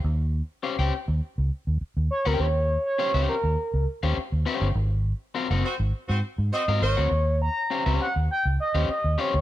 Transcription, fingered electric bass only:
X:1
M:4/4
L:1/16
Q:1/4=102
K:Ebmix
V:1 name="Fingered electric bass" clef=bass
E,,3 z2 D,, z E,, z D,, z E,, z E,, z =D,, | E,,3 z2 D,, z E,, z D,, z E,, z E,, z G,,, | A,,,3 z2 _G,,, z A,,, z A,, z A,, z A,, A,,, =D,, | E,,3 z2 D,, z E,, z D,, z E,, z E,, z =D,, |]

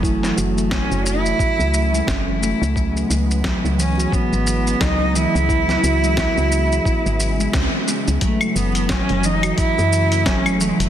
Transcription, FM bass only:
X:1
M:4/4
L:1/16
Q:"Swing 16ths" 1/4=88
K:F#m
V:1 name="FM bass" clef=bass
F,,,2 F,,,3 F,,,3 z C,,3 F,,,3 C,,- | C,,2 C,,3 C,,3 z G,,,3 C,,3 C,,- | C,,2 C,,3 C,,3 z G,,,3 C,, z2 C,, | z2 F,,,3 F,,,3 z F,,3 F,,,3 F,,, |]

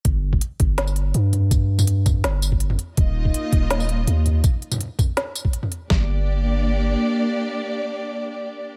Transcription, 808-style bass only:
X:1
M:4/4
L:1/8
Q:1/4=164
K:Gm
V:1 name="808-style bass" clef=bass
G,,,2 z G,,,3 G,,2- | G,,4 G,,,3 z | E,,,2 z E,,,3 E,,2 | z8 |
G,,,6 z2 | z8 |]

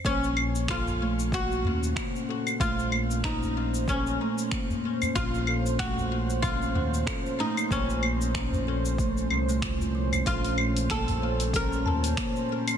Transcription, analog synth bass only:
X:1
M:4/4
L:1/8
Q:"Swing 16ths" 1/4=94
K:Bbm
V:1 name="Analog synth bass" clef=bass
B,,,4- B,,, E,, z2 | B,,,4- B,,, z3 | B,,,4- B,,, E,, z2 | B,,,4- B,,, C,,3 |
B,,,4- B,,, E,, z2 |]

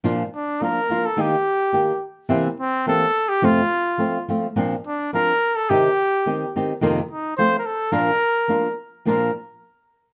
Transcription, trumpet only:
X:1
M:2/4
L:1/16
Q:1/4=107
K:Bb
V:1 name="Trumpet"
z2 D2 B3 A | G6 z2 | z2 C2 A3 G | F6 z2 |
z2 D2 B3 A | G6 z2 | z2 E2 c3/2 B/2 A2 | B6 z2 |
B2 z6 |]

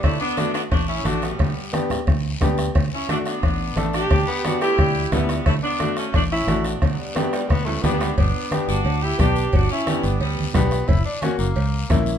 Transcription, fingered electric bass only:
X:1
M:4/4
L:1/8
Q:1/4=177
K:Glyd
V:1 name="Fingered electric bass" clef=bass
D,, z3 A,,,2 A,,,2 | D,, z3 D,,2 D,,2 | D,, z3 A,,,2 A,,,2 | D,, z3 D,,2 D,,2 |
D,, z3 A,,,2 A,,,2 | D,, z3 D,,2 D,,2 | G,,, z2 G,,, D,,2 B,,,2 | G,,, z2 G,,, D,,2 B,,,2 |
F,,, z2 F,,, C,,2 ^A,,,2 |]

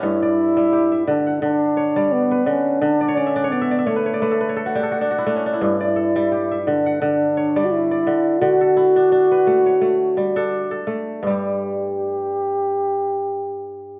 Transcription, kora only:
X:1
M:4/4
L:1/16
Q:"Swing 16ths" 1/4=86
K:Glyd
V:1 name="Kora"
C/2 z/2 d3 G e2 f3 c d2 B3 | z d/2 c/2 d/2 e/2 d/2 c/2 d/2 e/2 d/2 e/2 c/2 B/2 c/2 d/2 B/2 A/2 B/2 c/2 A/2 F/2 G/2 A/2 F/2 D/2 F/2 E/2 D/2 C/2 D/2 E/2- | E/2 z/2 d A2 G e2 f3 c d2 d3 | z A E2 D B2 c3 G, A2 A3 |
[G,,G,G]16 |]
V:2 name="Kora" clef=bass
G,,2 z G,2 z D,2 D,2 z G,2 z D,2 | D,2 z D2 z A,2 A,2 z D2 z A,2 | G,,2 z G,2 z D,2 D,2 z G,2 z D,2 | D,2 z D2 z A,2 A,2 z D2 z A,2 |
z16 |]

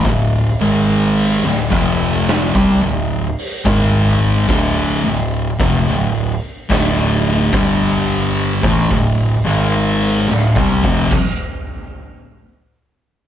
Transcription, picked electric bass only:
X:1
M:4/4
L:1/16
Q:1/4=54
K:Gmix
V:1 name="Picked electric bass" clef=bass
D,,,2 ^G,,,3 D,,, F,,,3 C,, D,,,2 z G,,,3 | D,,,2 D,,,2 F,,, D,,,2 z D,,,3 G,,,4 A,,, | D,,,2 ^G,,,3 D,,, C,, F,,, z8 |]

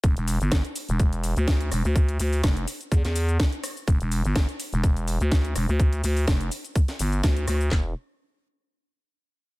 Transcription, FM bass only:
X:1
M:4/4
L:1/16
Q:"Swing 16ths" 1/4=125
K:Ephr
V:1 name="FM bass" clef=bass
E,,, E,,,2 G,,,2 z2 E,,,4 D,,3 E,,, D,,- | D,,2 D,,2 F,,,2 z2 E,, E,,3 z4 | E,,, E,,,2 G,,,2 z2 E,,,4 D,,3 E,,, D,,- | D,,2 D,,2 F,,,2 z4 G,,,2 D,,2 D,,2 |
E,,,2 z12 z2 |]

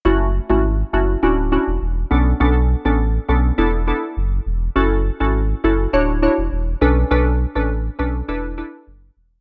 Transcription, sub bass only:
X:1
M:4/4
L:1/16
Q:1/4=102
K:Emix
V:1 name="Sub bass" clef=bass
F,,,3 G,,,3 F,,,2 D,,,3 E,,, E,,,2 B,,,2 | B,,,3 A,,,3 B,,,2 E,,,3 z F,,,2 E,,,2 | F,,,3 G,,,3 F,,,2 D,,,3 E,,, E,,,2 B,,,2 | B,,,3 A,,,3 B,,,2 E,,,3 z F,,,2 E,,,2 |]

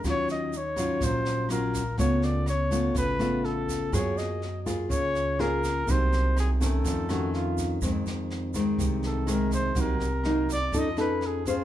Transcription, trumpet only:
X:1
M:4/4
L:1/8
Q:1/4=124
K:Fphr
V:1 name="Trumpet"
d e d2 c2 B2 | d =d _d2 _c2 =A2 | d e2 z d2 B2 | c2 A =A4 z |
[K:Fm] z4 z =A B c | B3 =d e =B ^G F |]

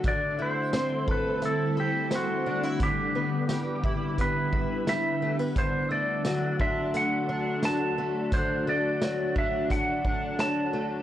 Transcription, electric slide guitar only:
X:1
M:4/4
L:1/16
Q:1/4=87
K:Dmix
V:1 name="Electric slide guitar"
d2 c4 B2 A2 G2 F4 | G8 B4 e3 z | c2 d4 e2 f4 a4 | c2 d4 e2 f4 a4 |]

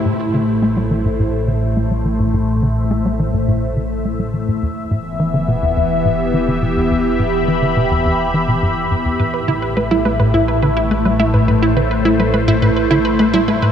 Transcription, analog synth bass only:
X:1
M:4/4
L:1/16
Q:1/4=105
K:Ador
V:1 name="Analog synth bass" clef=bass
A,, z D, z A, G, E, A,, A,, z D, z A, G, E, A,, | A,, z D, z A, G, E, A,, A,, z D, z A, G, E, A,, | E,, z A,, z E, D, B,, E,, E,, z A,, z E, D, B,, E,, | E,, z A,, z E, D, B,, E,, E,, z E, B,, G,, z G,, E,, |
A,, z D, z A, G, A, A,, A,, z D, z A, G, A, A,, | A,, z D, z A, G, A, A,, A,, z D, z A, G, A, A,, |]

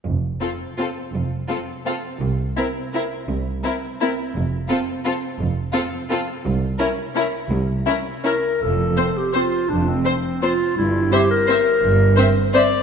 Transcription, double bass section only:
X:1
M:3/4
L:1/8
Q:1/4=167
K:F
V:1 name="Double bass section" clef=bass
F,,,2 z4 | F,,,2 z4 | C,,2 z4 | C,,2 z4 |
F,,,2 z4 | F,,,2 z4 | C,,2 z4 | C,,2 z4 |
F,,,2 z4 | F,,,2 z4 | G,,,2 z4 | G,,,2 z4 |]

